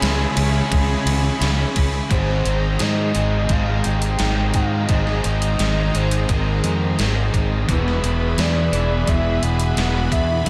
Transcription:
Already playing: C#3 E3 G#3 C#4 G#4 C#5 E5 B5
0.01 C#2 C#3 G#3 C#4, snare, ride
0.35 C#2 G#3 C#4, ride
0.70 C#2 C#3 G#3 C#4, kick, ride
1.05 C#2 G#3 C#4, ride
1.40 C#2 C#3 G#3 C#4, snare, ride
1.74 C#2 G#3 C#4, kick, ride
2.09 G#1 G#2 D#3 G#3 C4 D#4 G#4 C5 D#5 A#5, kick, closed hi-hat
2.44 G#1 G#3 C4 D#4, closed hi-hat
2.78 G#2 D#3 G#3 C4 D#4, snare, closed hi-hat
2.82 D#5
3.12 G#1 D#3 G#3 C4 D#4, closed hi-hat
3.17 G#2 G#3
3.49 G#1 G#2 D#3 G#3 C4 D#4 F5, kick, closed hi-hat
3.84 G#1 G#3 C4 D#4 G5, closed hi-hat
4.02 closed hi-hat
4.17 G#1 G#2 D#3 G#3 C4 D#4, snare, closed hi-hat
4.53 G#2 D#3 G#3 C4 D#4 F5, kick, closed hi-hat
4.88 G#1 G#2 D#3 G#3 C4 D#4 D#5, kick, closed hi-hat
5.07 snare
5.24 G#1 G#3 C4 D#4 D#5, closed hi-hat
5.42 closed hi-hat
5.58 G#1 G#2 D#3 G#3 C4 D#4, snare, closed hi-hat
5.93 G#1 G#2 D#3 G#3 C4 D#4 C5, closed hi-hat
6.11 closed hi-hat
6.28 G#1 G#2 D#3 G#3 C4 D#4 A#4, kick, closed hi-hat
6.62 F2 G#3 C4 D#4, closed hi-hat
6.97 G#1 G#2 D#3 G#3 C4 D#4, snare, closed hi-hat
7.33 G#1 D#3 G#3 C4 D#4, kick, closed hi-hat
7.67 E1 E2 B2 E3 G#3 B3 E4 G#4 B4 E5 B5, kick, closed hi-hat
7.88 snare
8.02 E1 G#3 B3 E4, closed hi-hat
8.36 E2 B2 E3 G#3 B3 E4 D5, snare, closed hi-hat
8.71 E1 E2 B2 E3 G#3 B3 E4, closed hi-hat
9.06 E1 E3 G#3 B3 E4 E5, kick, closed hi-hat
9.40 E1 G#3 B3 E4 F#5, closed hi-hat
9.60 closed hi-hat
9.75 E1 E2 B2 E3 G#3 B3 E4, snare, closed hi-hat
9.79 E3
10.10 E2 B2 E3 G#3 B3 E4 E5, kick, closed hi-hat
10.44 D2 D3 F#3 A3 A4 F#5, kick, closed hi-hat

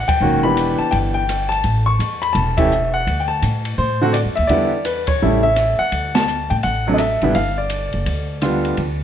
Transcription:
0.08 G5, muted upright bass stroke, kick, ride
0.20 E1 D#3 A#3 C#4 F#4
0.43 E3 B3 D4 G4 B5
0.57 hi-hat pedal, ride
0.79 A5, muted upright bass stroke
0.91 G1 G5, kick, ride
1.14 G5
1.29 cross-stick, hi-hat pedal, ride
1.49 A5, ride
1.64 A1, kick, ride
1.86 C#6
1.99 E2, hi-hat pedal, ride
2.22 B5, ride
2.33 E1 A5, kick, ride
2.57 E3 A3 C#4 G4 E5, kick, ride
2.72 hi-hat pedal
2.94 F#5
3.07 D2, kick, ride
3.20 G5
3.28 A5
3.42 A2, hi-hat pedal, ride
3.65 ride
3.78 A2 C5, kick
4.01 D3 A3 C4 F#4
4.13 D5, cross-stick, hi-hat pedal, ride
4.25 F#2
4.36 D#2 E5, ride
4.47 E2 D3 G3 B3 E4 D5, kick, ride
4.85 B4, hi-hat pedal, ride
5.07 C#5, kick, ride
5.22 A1 C#3 G3 A3 E4
5.43 E5
5.56 cross-stick, hi-hat pedal, ride
5.79 F#5, muted upright bass stroke
5.92 D2, kick, ride
6.15 A5, snare, ride
6.28 hi-hat pedal
6.50 A2 G5, ride
6.63 A1 F#5, kick, ride
6.87 C3 F#3 A3 D4
6.94 D#5
6.98 E5, cross-stick, hi-hat pedal, ride
7.22 A1 D3 G3 B3 E4, ride
7.35 G1 F5, kick, ride
7.58 D5
7.70 hi-hat pedal, ride
7.93 F#1, ride
8.06 D2, kick, ride
8.42 D3 G3 B3 F4, cross-stick, hi-hat pedal, ride
8.65 ride
8.77 D2, kick, ride

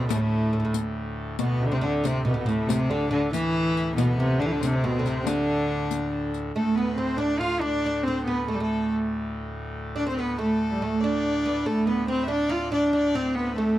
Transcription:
Already playing: D2 A2 B2
0.08 A2 A3, riq
0.16 G3
0.21 A3
0.53 A2
0.60 A2
0.65 A2
0.74 riq
1.38 D2 A2 B2 B3, riq
1.62 C3
1.66 D3
1.71 C3 C4
1.81 D3 D4
2.04 C3 C4, riq
2.25 B2 B3
2.30 B2 C3
2.36 B2 B3
2.46 A2 A3, riq
2.67 C3 C4, riq
2.89 D3 D4
3.10 D3 D4
3.31 E3 E4, riq
3.77 riq
3.96 B2 B3, riq
4.18 C3
4.39 D3 D4
4.45 E3
4.51 D3
4.59 C3 C4, riq
4.66 D4
4.75 C4
4.84 B2
4.99 D3
5.05 C3, riq
5.26 D3 D4, riq
5.91 riq
6.34 riq
6.54 D2 A2 A3 A4
6.76 B3 B4
6.96 C4 C5
7.17 D4 D5
7.39 F4 F5
7.60 D4 D5
7.86 D4
8.03 C4 C5
8.08 C4
8.24 B3 B4
8.47 A3 A4
8.55 G3
8.60 A3 A4
9.96 D4 D5
10.07 C4 C5
10.17 B3 B4
10.21 B3
10.39 A3 A4
10.72 G3
10.82 A3
11.01 D4 D5
11.46 B3
11.66 D2 A2 A3 A4
11.87 B3 B4
12.08 C4 C5
12.23 E5
12.28 D4 D5
12.49 F4
12.72 D4 D5
12.93 D4 D5
13.15 C4
13.35 B3 B4
13.56 A3 A4

